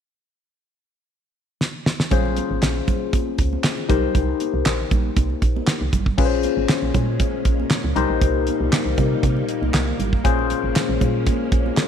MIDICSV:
0, 0, Header, 1, 5, 480
1, 0, Start_track
1, 0, Tempo, 508475
1, 76, Time_signature, 4, 2, 24, 8
1, 11214, End_track
2, 0, Start_track
2, 0, Title_t, "Tine electric piano"
2, 0, Program_c, 0, 4
2, 1990, Note_on_c, 0, 61, 68
2, 1996, Note_on_c, 0, 65, 69
2, 2000, Note_on_c, 0, 68, 67
2, 2007, Note_on_c, 0, 72, 78
2, 3639, Note_off_c, 0, 61, 0
2, 3642, Note_off_c, 0, 65, 0
2, 3644, Note_off_c, 0, 68, 0
2, 3648, Note_off_c, 0, 72, 0
2, 3668, Note_on_c, 0, 63, 73
2, 3674, Note_on_c, 0, 67, 69
2, 3678, Note_on_c, 0, 70, 67
2, 3682, Note_on_c, 0, 72, 76
2, 5554, Note_off_c, 0, 63, 0
2, 5557, Note_off_c, 0, 67, 0
2, 5559, Note_off_c, 0, 70, 0
2, 5561, Note_off_c, 0, 72, 0
2, 5830, Note_on_c, 0, 61, 76
2, 5836, Note_on_c, 0, 65, 71
2, 5840, Note_on_c, 0, 68, 65
2, 5844, Note_on_c, 0, 71, 64
2, 5901, Note_off_c, 0, 71, 0
2, 5902, Note_on_c, 0, 72, 78
2, 7479, Note_off_c, 0, 61, 0
2, 7482, Note_off_c, 0, 65, 0
2, 7484, Note_off_c, 0, 68, 0
2, 7510, Note_on_c, 0, 63, 79
2, 7513, Note_off_c, 0, 72, 0
2, 7513, Note_on_c, 0, 67, 67
2, 7519, Note_on_c, 0, 70, 69
2, 7524, Note_on_c, 0, 72, 81
2, 9395, Note_off_c, 0, 63, 0
2, 9396, Note_off_c, 0, 67, 0
2, 9399, Note_off_c, 0, 70, 0
2, 9402, Note_off_c, 0, 72, 0
2, 9668, Note_on_c, 0, 61, 73
2, 9671, Note_on_c, 0, 65, 71
2, 9678, Note_on_c, 0, 68, 74
2, 9682, Note_on_c, 0, 72, 88
2, 11214, Note_off_c, 0, 61, 0
2, 11214, Note_off_c, 0, 65, 0
2, 11214, Note_off_c, 0, 68, 0
2, 11214, Note_off_c, 0, 72, 0
2, 11214, End_track
3, 0, Start_track
3, 0, Title_t, "String machine"
3, 0, Program_c, 1, 50
3, 5835, Note_on_c, 1, 58, 69
3, 5835, Note_on_c, 1, 61, 79
3, 5837, Note_on_c, 1, 46, 76
3, 5837, Note_on_c, 1, 56, 69
3, 7499, Note_off_c, 1, 61, 0
3, 7500, Note_off_c, 1, 56, 0
3, 7514, Note_on_c, 1, 63, 86
3, 7515, Note_on_c, 1, 55, 75
3, 9653, Note_off_c, 1, 63, 0
3, 9654, Note_off_c, 1, 55, 0
3, 9676, Note_on_c, 1, 56, 72
3, 9677, Note_on_c, 1, 61, 86
3, 11214, Note_off_c, 1, 46, 0
3, 11214, Note_off_c, 1, 56, 0
3, 11214, Note_off_c, 1, 58, 0
3, 11214, Note_off_c, 1, 61, 0
3, 11214, End_track
4, 0, Start_track
4, 0, Title_t, "FM bass"
4, 0, Program_c, 2, 39
4, 1996, Note_on_c, 2, 34, 103
4, 2264, Note_off_c, 2, 34, 0
4, 2367, Note_on_c, 2, 32, 95
4, 2448, Note_off_c, 2, 32, 0
4, 2476, Note_on_c, 2, 34, 93
4, 2651, Note_off_c, 2, 34, 0
4, 3195, Note_on_c, 2, 37, 78
4, 3371, Note_off_c, 2, 37, 0
4, 3678, Note_on_c, 2, 36, 100
4, 3852, Note_off_c, 2, 36, 0
4, 3916, Note_on_c, 2, 36, 95
4, 4091, Note_off_c, 2, 36, 0
4, 4283, Note_on_c, 2, 36, 103
4, 4365, Note_off_c, 2, 36, 0
4, 4398, Note_on_c, 2, 34, 85
4, 4572, Note_off_c, 2, 34, 0
4, 4638, Note_on_c, 2, 34, 89
4, 4812, Note_off_c, 2, 34, 0
4, 4877, Note_on_c, 2, 36, 96
4, 5052, Note_off_c, 2, 36, 0
4, 5116, Note_on_c, 2, 34, 92
4, 5291, Note_off_c, 2, 34, 0
4, 5485, Note_on_c, 2, 36, 88
4, 5566, Note_off_c, 2, 36, 0
4, 5597, Note_on_c, 2, 31, 95
4, 5689, Note_off_c, 2, 31, 0
4, 5723, Note_on_c, 2, 32, 90
4, 5805, Note_off_c, 2, 32, 0
4, 5836, Note_on_c, 2, 34, 105
4, 6104, Note_off_c, 2, 34, 0
4, 6202, Note_on_c, 2, 32, 95
4, 6284, Note_off_c, 2, 32, 0
4, 6443, Note_on_c, 2, 34, 94
4, 6525, Note_off_c, 2, 34, 0
4, 6557, Note_on_c, 2, 46, 101
4, 6825, Note_off_c, 2, 46, 0
4, 7034, Note_on_c, 2, 34, 84
4, 7210, Note_off_c, 2, 34, 0
4, 7402, Note_on_c, 2, 37, 97
4, 7484, Note_off_c, 2, 37, 0
4, 7514, Note_on_c, 2, 36, 104
4, 7607, Note_off_c, 2, 36, 0
4, 7641, Note_on_c, 2, 34, 82
4, 7724, Note_off_c, 2, 34, 0
4, 7755, Note_on_c, 2, 36, 104
4, 8023, Note_off_c, 2, 36, 0
4, 8122, Note_on_c, 2, 36, 93
4, 8205, Note_off_c, 2, 36, 0
4, 8361, Note_on_c, 2, 36, 86
4, 8444, Note_off_c, 2, 36, 0
4, 8475, Note_on_c, 2, 48, 90
4, 8651, Note_off_c, 2, 48, 0
4, 8715, Note_on_c, 2, 48, 102
4, 8890, Note_off_c, 2, 48, 0
4, 9081, Note_on_c, 2, 36, 84
4, 9164, Note_off_c, 2, 36, 0
4, 9194, Note_on_c, 2, 36, 96
4, 9370, Note_off_c, 2, 36, 0
4, 9435, Note_on_c, 2, 32, 96
4, 9610, Note_off_c, 2, 32, 0
4, 9674, Note_on_c, 2, 34, 99
4, 9943, Note_off_c, 2, 34, 0
4, 10040, Note_on_c, 2, 32, 85
4, 10123, Note_off_c, 2, 32, 0
4, 10281, Note_on_c, 2, 34, 102
4, 10364, Note_off_c, 2, 34, 0
4, 10397, Note_on_c, 2, 46, 90
4, 10665, Note_off_c, 2, 46, 0
4, 10874, Note_on_c, 2, 34, 93
4, 11050, Note_off_c, 2, 34, 0
4, 11214, End_track
5, 0, Start_track
5, 0, Title_t, "Drums"
5, 1519, Note_on_c, 9, 38, 60
5, 1613, Note_off_c, 9, 38, 0
5, 1759, Note_on_c, 9, 38, 87
5, 1853, Note_off_c, 9, 38, 0
5, 1886, Note_on_c, 9, 38, 92
5, 1981, Note_off_c, 9, 38, 0
5, 1995, Note_on_c, 9, 42, 76
5, 1996, Note_on_c, 9, 36, 97
5, 1996, Note_on_c, 9, 62, 36
5, 1996, Note_on_c, 9, 64, 77
5, 2089, Note_off_c, 9, 42, 0
5, 2090, Note_off_c, 9, 62, 0
5, 2090, Note_off_c, 9, 64, 0
5, 2091, Note_off_c, 9, 36, 0
5, 2127, Note_on_c, 9, 62, 33
5, 2222, Note_off_c, 9, 62, 0
5, 2233, Note_on_c, 9, 42, 71
5, 2245, Note_on_c, 9, 63, 68
5, 2327, Note_off_c, 9, 42, 0
5, 2339, Note_off_c, 9, 63, 0
5, 2473, Note_on_c, 9, 42, 81
5, 2479, Note_on_c, 9, 38, 101
5, 2480, Note_on_c, 9, 39, 81
5, 2568, Note_off_c, 9, 42, 0
5, 2574, Note_off_c, 9, 38, 0
5, 2574, Note_off_c, 9, 39, 0
5, 2603, Note_on_c, 9, 62, 35
5, 2697, Note_off_c, 9, 62, 0
5, 2714, Note_on_c, 9, 63, 67
5, 2714, Note_on_c, 9, 64, 67
5, 2717, Note_on_c, 9, 42, 58
5, 2718, Note_on_c, 9, 36, 85
5, 2808, Note_off_c, 9, 63, 0
5, 2808, Note_off_c, 9, 64, 0
5, 2811, Note_off_c, 9, 42, 0
5, 2812, Note_off_c, 9, 36, 0
5, 2955, Note_on_c, 9, 62, 37
5, 2955, Note_on_c, 9, 63, 78
5, 2956, Note_on_c, 9, 36, 99
5, 2956, Note_on_c, 9, 42, 76
5, 3049, Note_off_c, 9, 62, 0
5, 3049, Note_off_c, 9, 63, 0
5, 3050, Note_off_c, 9, 42, 0
5, 3051, Note_off_c, 9, 36, 0
5, 3194, Note_on_c, 9, 42, 73
5, 3197, Note_on_c, 9, 36, 83
5, 3289, Note_off_c, 9, 42, 0
5, 3291, Note_off_c, 9, 36, 0
5, 3330, Note_on_c, 9, 63, 74
5, 3425, Note_off_c, 9, 63, 0
5, 3433, Note_on_c, 9, 62, 27
5, 3436, Note_on_c, 9, 42, 70
5, 3437, Note_on_c, 9, 38, 103
5, 3437, Note_on_c, 9, 39, 82
5, 3527, Note_off_c, 9, 62, 0
5, 3531, Note_off_c, 9, 38, 0
5, 3531, Note_off_c, 9, 42, 0
5, 3532, Note_off_c, 9, 39, 0
5, 3567, Note_on_c, 9, 62, 40
5, 3661, Note_off_c, 9, 62, 0
5, 3677, Note_on_c, 9, 36, 93
5, 3678, Note_on_c, 9, 42, 66
5, 3681, Note_on_c, 9, 64, 69
5, 3772, Note_off_c, 9, 36, 0
5, 3773, Note_off_c, 9, 42, 0
5, 3775, Note_off_c, 9, 64, 0
5, 3916, Note_on_c, 9, 42, 77
5, 3917, Note_on_c, 9, 36, 102
5, 3918, Note_on_c, 9, 64, 77
5, 4010, Note_off_c, 9, 42, 0
5, 4011, Note_off_c, 9, 36, 0
5, 4012, Note_off_c, 9, 64, 0
5, 4154, Note_on_c, 9, 42, 74
5, 4167, Note_on_c, 9, 63, 64
5, 4249, Note_off_c, 9, 42, 0
5, 4262, Note_off_c, 9, 63, 0
5, 4393, Note_on_c, 9, 42, 80
5, 4399, Note_on_c, 9, 38, 103
5, 4399, Note_on_c, 9, 39, 90
5, 4487, Note_off_c, 9, 42, 0
5, 4493, Note_off_c, 9, 38, 0
5, 4493, Note_off_c, 9, 39, 0
5, 4636, Note_on_c, 9, 63, 71
5, 4636, Note_on_c, 9, 64, 67
5, 4638, Note_on_c, 9, 36, 88
5, 4638, Note_on_c, 9, 42, 57
5, 4730, Note_off_c, 9, 63, 0
5, 4730, Note_off_c, 9, 64, 0
5, 4732, Note_off_c, 9, 36, 0
5, 4732, Note_off_c, 9, 42, 0
5, 4876, Note_on_c, 9, 42, 77
5, 4877, Note_on_c, 9, 36, 94
5, 4878, Note_on_c, 9, 62, 37
5, 4878, Note_on_c, 9, 63, 77
5, 4970, Note_off_c, 9, 42, 0
5, 4971, Note_off_c, 9, 36, 0
5, 4972, Note_off_c, 9, 62, 0
5, 4972, Note_off_c, 9, 63, 0
5, 5003, Note_on_c, 9, 62, 33
5, 5097, Note_off_c, 9, 62, 0
5, 5116, Note_on_c, 9, 42, 77
5, 5117, Note_on_c, 9, 36, 83
5, 5210, Note_off_c, 9, 42, 0
5, 5212, Note_off_c, 9, 36, 0
5, 5252, Note_on_c, 9, 63, 75
5, 5346, Note_off_c, 9, 63, 0
5, 5356, Note_on_c, 9, 42, 70
5, 5357, Note_on_c, 9, 38, 107
5, 5357, Note_on_c, 9, 39, 81
5, 5450, Note_off_c, 9, 42, 0
5, 5451, Note_off_c, 9, 38, 0
5, 5451, Note_off_c, 9, 39, 0
5, 5597, Note_on_c, 9, 36, 89
5, 5597, Note_on_c, 9, 42, 69
5, 5600, Note_on_c, 9, 64, 68
5, 5691, Note_off_c, 9, 36, 0
5, 5692, Note_off_c, 9, 42, 0
5, 5694, Note_off_c, 9, 64, 0
5, 5722, Note_on_c, 9, 36, 81
5, 5817, Note_off_c, 9, 36, 0
5, 5836, Note_on_c, 9, 36, 107
5, 5836, Note_on_c, 9, 49, 85
5, 5930, Note_off_c, 9, 36, 0
5, 5930, Note_off_c, 9, 49, 0
5, 6073, Note_on_c, 9, 42, 74
5, 6085, Note_on_c, 9, 63, 73
5, 6168, Note_off_c, 9, 42, 0
5, 6180, Note_off_c, 9, 63, 0
5, 6312, Note_on_c, 9, 42, 82
5, 6318, Note_on_c, 9, 38, 109
5, 6318, Note_on_c, 9, 39, 86
5, 6320, Note_on_c, 9, 62, 35
5, 6320, Note_on_c, 9, 63, 53
5, 6406, Note_off_c, 9, 42, 0
5, 6412, Note_off_c, 9, 38, 0
5, 6412, Note_off_c, 9, 39, 0
5, 6414, Note_off_c, 9, 62, 0
5, 6414, Note_off_c, 9, 63, 0
5, 6554, Note_on_c, 9, 63, 72
5, 6554, Note_on_c, 9, 64, 74
5, 6555, Note_on_c, 9, 42, 59
5, 6556, Note_on_c, 9, 36, 88
5, 6648, Note_off_c, 9, 63, 0
5, 6648, Note_off_c, 9, 64, 0
5, 6650, Note_off_c, 9, 42, 0
5, 6651, Note_off_c, 9, 36, 0
5, 6793, Note_on_c, 9, 42, 82
5, 6795, Note_on_c, 9, 36, 98
5, 6797, Note_on_c, 9, 63, 81
5, 6888, Note_off_c, 9, 42, 0
5, 6889, Note_off_c, 9, 36, 0
5, 6891, Note_off_c, 9, 63, 0
5, 7033, Note_on_c, 9, 42, 78
5, 7035, Note_on_c, 9, 36, 83
5, 7128, Note_off_c, 9, 42, 0
5, 7130, Note_off_c, 9, 36, 0
5, 7171, Note_on_c, 9, 63, 72
5, 7265, Note_off_c, 9, 63, 0
5, 7272, Note_on_c, 9, 62, 29
5, 7273, Note_on_c, 9, 42, 75
5, 7274, Note_on_c, 9, 38, 105
5, 7274, Note_on_c, 9, 39, 80
5, 7366, Note_off_c, 9, 62, 0
5, 7368, Note_off_c, 9, 38, 0
5, 7368, Note_off_c, 9, 39, 0
5, 7368, Note_off_c, 9, 42, 0
5, 7406, Note_on_c, 9, 62, 38
5, 7501, Note_off_c, 9, 62, 0
5, 7515, Note_on_c, 9, 42, 70
5, 7521, Note_on_c, 9, 64, 75
5, 7610, Note_off_c, 9, 42, 0
5, 7615, Note_off_c, 9, 64, 0
5, 7755, Note_on_c, 9, 36, 104
5, 7755, Note_on_c, 9, 42, 81
5, 7757, Note_on_c, 9, 62, 36
5, 7849, Note_off_c, 9, 42, 0
5, 7850, Note_off_c, 9, 36, 0
5, 7852, Note_off_c, 9, 62, 0
5, 7993, Note_on_c, 9, 42, 73
5, 8006, Note_on_c, 9, 63, 69
5, 8087, Note_off_c, 9, 42, 0
5, 8101, Note_off_c, 9, 63, 0
5, 8233, Note_on_c, 9, 42, 82
5, 8239, Note_on_c, 9, 38, 117
5, 8239, Note_on_c, 9, 39, 86
5, 8241, Note_on_c, 9, 62, 34
5, 8241, Note_on_c, 9, 63, 49
5, 8327, Note_off_c, 9, 42, 0
5, 8333, Note_off_c, 9, 38, 0
5, 8333, Note_off_c, 9, 39, 0
5, 8335, Note_off_c, 9, 62, 0
5, 8335, Note_off_c, 9, 63, 0
5, 8366, Note_on_c, 9, 62, 36
5, 8461, Note_off_c, 9, 62, 0
5, 8475, Note_on_c, 9, 42, 59
5, 8476, Note_on_c, 9, 36, 91
5, 8476, Note_on_c, 9, 63, 72
5, 8476, Note_on_c, 9, 64, 73
5, 8570, Note_off_c, 9, 42, 0
5, 8570, Note_off_c, 9, 63, 0
5, 8570, Note_off_c, 9, 64, 0
5, 8571, Note_off_c, 9, 36, 0
5, 8715, Note_on_c, 9, 36, 105
5, 8715, Note_on_c, 9, 42, 80
5, 8716, Note_on_c, 9, 62, 39
5, 8716, Note_on_c, 9, 63, 78
5, 8809, Note_off_c, 9, 42, 0
5, 8810, Note_off_c, 9, 36, 0
5, 8810, Note_off_c, 9, 62, 0
5, 8810, Note_off_c, 9, 63, 0
5, 8842, Note_on_c, 9, 62, 36
5, 8937, Note_off_c, 9, 62, 0
5, 8955, Note_on_c, 9, 42, 79
5, 9049, Note_off_c, 9, 42, 0
5, 9089, Note_on_c, 9, 63, 75
5, 9184, Note_off_c, 9, 63, 0
5, 9192, Note_on_c, 9, 62, 29
5, 9195, Note_on_c, 9, 42, 77
5, 9196, Note_on_c, 9, 38, 100
5, 9196, Note_on_c, 9, 39, 87
5, 9287, Note_off_c, 9, 62, 0
5, 9290, Note_off_c, 9, 38, 0
5, 9290, Note_off_c, 9, 39, 0
5, 9290, Note_off_c, 9, 42, 0
5, 9325, Note_on_c, 9, 62, 40
5, 9419, Note_off_c, 9, 62, 0
5, 9437, Note_on_c, 9, 42, 69
5, 9440, Note_on_c, 9, 64, 74
5, 9531, Note_off_c, 9, 42, 0
5, 9535, Note_off_c, 9, 64, 0
5, 9561, Note_on_c, 9, 36, 81
5, 9656, Note_off_c, 9, 36, 0
5, 9673, Note_on_c, 9, 42, 86
5, 9675, Note_on_c, 9, 36, 101
5, 9675, Note_on_c, 9, 62, 35
5, 9768, Note_off_c, 9, 42, 0
5, 9769, Note_off_c, 9, 36, 0
5, 9769, Note_off_c, 9, 62, 0
5, 9808, Note_on_c, 9, 62, 35
5, 9902, Note_off_c, 9, 62, 0
5, 9913, Note_on_c, 9, 42, 73
5, 9926, Note_on_c, 9, 63, 65
5, 10008, Note_off_c, 9, 42, 0
5, 10020, Note_off_c, 9, 63, 0
5, 10153, Note_on_c, 9, 42, 85
5, 10158, Note_on_c, 9, 62, 35
5, 10158, Note_on_c, 9, 63, 52
5, 10159, Note_on_c, 9, 38, 103
5, 10159, Note_on_c, 9, 39, 90
5, 10247, Note_off_c, 9, 42, 0
5, 10252, Note_off_c, 9, 62, 0
5, 10252, Note_off_c, 9, 63, 0
5, 10253, Note_off_c, 9, 38, 0
5, 10253, Note_off_c, 9, 39, 0
5, 10392, Note_on_c, 9, 63, 68
5, 10392, Note_on_c, 9, 64, 72
5, 10396, Note_on_c, 9, 42, 59
5, 10397, Note_on_c, 9, 36, 84
5, 10486, Note_off_c, 9, 63, 0
5, 10486, Note_off_c, 9, 64, 0
5, 10491, Note_off_c, 9, 36, 0
5, 10491, Note_off_c, 9, 42, 0
5, 10633, Note_on_c, 9, 62, 38
5, 10633, Note_on_c, 9, 63, 79
5, 10634, Note_on_c, 9, 42, 83
5, 10635, Note_on_c, 9, 36, 99
5, 10728, Note_off_c, 9, 42, 0
5, 10728, Note_off_c, 9, 62, 0
5, 10728, Note_off_c, 9, 63, 0
5, 10730, Note_off_c, 9, 36, 0
5, 10874, Note_on_c, 9, 42, 80
5, 10875, Note_on_c, 9, 36, 91
5, 10968, Note_off_c, 9, 42, 0
5, 10970, Note_off_c, 9, 36, 0
5, 11008, Note_on_c, 9, 63, 77
5, 11102, Note_off_c, 9, 63, 0
5, 11110, Note_on_c, 9, 62, 31
5, 11114, Note_on_c, 9, 38, 109
5, 11114, Note_on_c, 9, 39, 82
5, 11114, Note_on_c, 9, 42, 79
5, 11205, Note_off_c, 9, 62, 0
5, 11208, Note_off_c, 9, 42, 0
5, 11209, Note_off_c, 9, 38, 0
5, 11209, Note_off_c, 9, 39, 0
5, 11214, End_track
0, 0, End_of_file